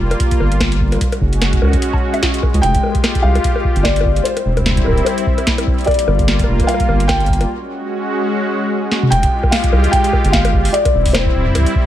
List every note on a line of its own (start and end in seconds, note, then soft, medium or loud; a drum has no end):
0.00 0.15 F1 medium
0.00 0.98 G3 medium
0.00 0.99 A#3 medium
0.00 0.99 F4 medium
0.11 closed hi-hat soft
0.11 high bongo medium
0.20 kick loud
0.20 closed hi-hat medium
0.31 kick loud
0.31 closed hi-hat soft
0.40 0.97 G1 medium
0.40 high bongo soft
0.52 closed hi-hat soft
0.60 kick loud
0.60 snare loud
0.60 closed hi-hat medium
0.60 high bongo medium
0.72 closed hi-hat medium
0.81 kick loud
0.92 closed hi-hat soft
0.92 high bongo soft
0.94 high bongo soft
0.97 high bongo soft
0.99 2.62 F#4 medium
0.99 kick loud
0.99 closed hi-hat medium
0.99 high bongo soft
1.01 4.22 G#3 medium
1.01 2.62 C#4 medium
1.01 high bongo soft
1.04 high bongo soft
1.07 high bongo soft
1.10 closed hi-hat soft
1.10 high bongo soft
1.12 high bongo medium
1.21 1.58 F#1 medium
1.21 kick loud
1.33 closed hi-hat soft
1.42 snare loud
1.42 closed hi-hat medium
1.42 high bongo soft
1.53 kick loud
1.53 closed hi-hat soft
1.62 1.77 C#2 medium
1.62 high bongo medium
1.65 high bongo medium
1.68 high bongo soft
1.70 kick loud
1.70 closed hi-hat soft
1.70 high bongo soft
1.73 high bongo soft
1.80 closed hi-hat medium
1.80 high bongo soft
1.93 kick loud
1.93 high bongo soft
2.14 closed hi-hat soft
2.14 high bongo medium
2.23 kick loud
2.23 snare loud
2.23 closed hi-hat medium
2.34 closed hi-hat soft
2.43 kick loud
2.43 high bongo soft
2.54 2.60 C#2 medium
2.54 closed hi-hat soft
2.62 2.78 F1 loud
2.62 4.24 F4 medium
2.62 4.24 G4 medium
2.62 3.25 G5 loud
2.62 closed hi-hat medium
2.74 kick loud
2.74 closed hi-hat soft
2.83 high bongo soft
2.86 high bongo soft
2.89 high bongo soft
2.92 kick loud
2.92 closed hi-hat soft
2.92 high bongo soft
3.04 snare loud
3.04 closed hi-hat medium
3.04 high bongo medium
3.15 kick loud
3.15 closed hi-hat soft
3.22 3.39 C2 medium
3.22 3.80 F5 loud
3.35 closed hi-hat soft
3.35 high bongo soft
3.44 kick loud
3.44 closed hi-hat medium
3.56 high bongo medium
3.64 kick loud
3.76 4.21 G1 medium
3.76 closed hi-hat soft
3.83 4.26 D5 loud
3.83 kick loud
3.83 snare loud
3.83 closed hi-hat medium
3.83 high bongo soft
3.96 closed hi-hat medium
4.01 high bongo medium
4.05 kick loud
4.16 closed hi-hat soft
4.24 7.46 G3 medium
4.24 5.86 C4 medium
4.24 5.86 E4 medium
4.24 4.87 C5 medium
4.24 closed hi-hat medium
4.37 closed hi-hat soft
4.37 high bongo medium
4.46 4.82 E1 medium
4.57 kick soft
4.57 closed hi-hat soft
4.57 high bongo medium
4.61 kick medium
4.66 kick medium
4.66 snare loud
4.66 closed hi-hat medium
4.71 kick medium
4.77 kick loud
4.77 closed hi-hat soft
4.84 5.01 D1 medium
4.84 5.06 A#4 medium
4.84 high bongo medium
4.92 kick loud
4.97 closed hi-hat soft
5.05 5.43 C5 medium
5.05 closed hi-hat medium
5.05 high bongo medium
5.18 closed hi-hat soft
5.27 kick loud
5.38 closed hi-hat soft
5.38 high bongo soft
5.47 kick loud
5.47 snare loud
5.47 closed hi-hat medium
5.58 closed hi-hat medium
5.58 high bongo medium
5.67 kick loud
5.78 closed hi-hat soft
5.81 closed hi-hat soft
5.84 6.64 D5 loud
5.84 closed hi-hat soft
5.87 7.48 A#3 medium
5.87 7.48 F4 medium
5.87 kick loud
5.87 closed hi-hat soft
5.87 high bongo medium
5.91 closed hi-hat soft
5.94 closed hi-hat soft
5.99 closed hi-hat medium
6.08 6.44 G1 medium
6.08 high bongo medium
6.19 kick loud
6.19 closed hi-hat soft
6.28 snare loud
6.28 closed hi-hat medium
6.39 kick loud
6.39 closed hi-hat soft
6.44 high bongo medium
6.48 6.63 F1 medium
6.60 kick loud
6.60 closed hi-hat soft
6.60 high bongo soft
6.64 7.05 F5 loud
6.64 high bongo soft
6.69 closed hi-hat medium
6.69 high bongo medium
6.74 high bongo medium
6.80 kick loud
6.80 closed hi-hat soft
6.89 7.45 G1 medium
6.89 high bongo medium
7.00 closed hi-hat soft
7.08 7.46 G5 loud
7.08 kick loud
7.08 snare loud
7.08 closed hi-hat medium
7.08 high bongo medium
7.20 closed hi-hat soft
7.26 kick medium
7.26 closed hi-hat soft
7.33 closed hi-hat soft
7.41 closed hi-hat soft
7.41 high bongo medium
7.49 9.10 G#3 medium
7.49 9.10 C#4 medium
7.49 9.10 F#4 medium
8.91 snare medium
9.03 mid tom medium
9.10 9.27 F1 loud
9.10 10.72 G#3 medium
9.10 10.72 F4 medium
9.10 10.72 G4 medium
9.10 9.49 G5 loud
9.10 closed hi-hat medium
9.23 kick loud
9.23 closed hi-hat medium
9.43 kick loud
9.43 high bongo medium
9.51 9.93 F5 medium
9.51 snare loud
9.51 closed hi-hat medium
9.51 open hi-hat medium
9.64 kick loud
9.64 closed hi-hat medium
9.73 9.88 C2 medium
9.73 high bongo medium
9.84 closed hi-hat soft
9.91 10.34 G5 loud
9.91 kick loud
9.91 closed hi-hat medium
10.04 closed hi-hat medium
10.13 kick loud
10.13 high bongo medium
10.25 10.70 G1 medium
10.25 closed hi-hat soft
10.32 10.75 F5 loud
10.32 kick loud
10.32 snare loud
10.32 closed hi-hat medium
10.45 closed hi-hat medium
10.45 high bongo medium
10.54 kick loud
10.65 open hi-hat medium
10.73 11.86 G3 medium
10.73 11.86 C4 medium
10.73 11.86 E4 medium
10.73 11.15 D5 loud
10.73 closed hi-hat medium
10.85 kick loud
10.85 closed hi-hat medium
10.85 high bongo medium
10.94 11.31 E1 medium
11.06 kick loud
11.06 open hi-hat medium
11.13 11.86 C5 medium
11.13 snare loud
11.13 closed hi-hat medium
11.13 high bongo medium
11.26 kick loud
11.35 11.50 D1 medium
11.46 kick soft
11.48 kick medium
11.51 kick medium
11.53 kick medium
11.55 kick medium
11.55 closed hi-hat medium
11.55 high bongo medium
11.58 kick medium
11.61 kick loud
11.64 kick loud
11.64 closed hi-hat medium
11.75 kick loud